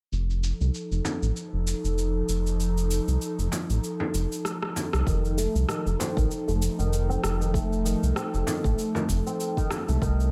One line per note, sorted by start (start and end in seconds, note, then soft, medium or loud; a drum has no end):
0.12 0.52 F1 medium
0.12 5.03 F3 medium
0.12 5.03 D#4 medium
0.12 5.03 A4 medium
0.12 cabasa soft
0.30 cabasa soft
0.44 cabasa medium
0.60 0.70 C2 medium
0.60 cabasa soft
0.74 cabasa soft
0.91 1.01 F1 medium
0.91 cabasa soft
1.05 frame drum medium
1.05 cabasa medium
1.22 1.32 A1 medium
1.22 cabasa soft
1.36 cabasa soft
1.53 1.74 F1 medium
1.67 cabasa medium
1.84 2.22 F1 loud
1.84 cabasa soft
1.98 cabasa soft
2.28 2.99 F1 medium
2.28 cabasa medium
2.47 cabasa soft
2.60 cabasa soft
2.78 cabasa soft
2.91 cabasa medium
3.08 3.17 C2 medium
3.08 cabasa soft
3.22 cabasa soft
3.38 3.48 F1 medium
3.38 cabasa soft
3.52 frame drum medium
3.52 cabasa medium
3.69 3.79 A1 medium
3.69 cabasa soft
3.84 cabasa soft
4.00 frame drum medium
4.14 4.26 F1 medium
4.14 cabasa medium
4.32 cabasa soft
4.45 cross-stick medium
4.45 cabasa soft
4.63 cross-stick medium
4.76 frame drum medium
4.76 cabasa medium
4.93 5.03 C2 medium
4.93 cross-stick medium
4.93 cabasa soft
5.07 5.47 F1 medium
5.07 5.36 D#3 medium
5.07 9.98 F3 medium
5.07 9.98 D#4 medium
5.07 9.98 A4 medium
5.07 kick loud
5.07 cabasa soft
5.25 cabasa soft
5.38 5.54 A3 medium
5.38 cabasa medium
5.55 5.65 C2 loud
5.55 cabasa soft
5.68 5.85 D#3 medium
5.68 cross-stick medium
5.68 cabasa soft
5.86 5.95 F1 medium
5.86 cabasa soft
5.99 6.16 C4 medium
5.99 frame drum medium
5.99 cabasa medium
6.17 6.27 A1 medium
6.17 6.30 D#3 medium
6.17 kick loud
6.17 cabasa soft
6.31 cabasa soft
6.48 6.68 F1 medium
6.48 6.61 A3 medium
6.48 cabasa soft
6.62 cabasa medium
6.79 7.17 F1 loud
6.79 7.08 D#3 medium
6.79 cabasa soft
6.93 cabasa soft
7.09 7.22 C4 medium
7.09 cabasa soft
7.23 7.94 F1 medium
7.23 cross-stick medium
7.23 cabasa medium
7.40 7.53 D#3 medium
7.40 cabasa soft
7.54 7.84 A3 medium
7.54 kick loud
7.54 cabasa soft
7.73 cabasa soft
7.85 8.15 D#3 medium
7.85 cabasa medium
8.03 8.12 C2 medium
8.03 cabasa soft
8.16 8.26 C4 medium
8.16 cross-stick medium
8.16 cabasa soft
8.34 8.43 F1 medium
8.34 cabasa soft
8.47 8.64 D#3 medium
8.47 frame drum medium
8.47 cabasa medium
8.64 8.74 A1 medium
8.64 8.94 A3 medium
8.64 kick loud
8.64 cabasa soft
8.79 cabasa soft
8.95 9.03 D#3 medium
8.95 frame drum medium
8.95 cabasa soft
9.09 9.21 F1 medium
9.09 kick medium
9.09 cabasa medium
9.26 9.56 C4 medium
9.26 cabasa soft
9.40 cabasa soft
9.57 9.70 D#3 medium
9.57 kick medium
9.57 cabasa soft
9.70 cross-stick medium
9.70 frame drum medium
9.70 cabasa medium
9.88 9.98 C2 medium
9.88 10.00 A3 medium
9.88 cabasa soft
10.01 10.31 C2 medium
10.01 10.31 D#3 medium
10.01 10.31 C4 medium
10.01 10.31 A#4 medium
10.01 kick loud
10.01 cabasa soft
10.20 cabasa soft